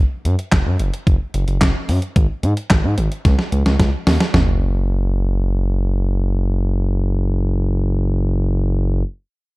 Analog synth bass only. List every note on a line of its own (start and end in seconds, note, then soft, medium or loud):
0.25 0.36 F#2 loud
0.53 0.63 F#1 loud
0.66 0.77 F#2 loud
0.80 0.90 F#1 loud
1.07 1.17 F#1 loud
1.34 1.45 F#1 loud
1.48 1.58 F#1 loud
1.61 1.72 F#1 loud
1.89 1.99 F#2 loud
2.16 2.27 G#1 loud
2.43 2.54 G#2 loud
2.71 2.81 G#1 loud
2.84 2.95 G#2 loud
2.98 3.08 G#1 loud
3.25 3.36 C#2 loud
3.52 3.63 C#2 loud
3.66 3.76 C#2 loud
3.80 3.90 C#2 medium
4.07 4.17 D#2 medium
4.34 9.03 F#1 loud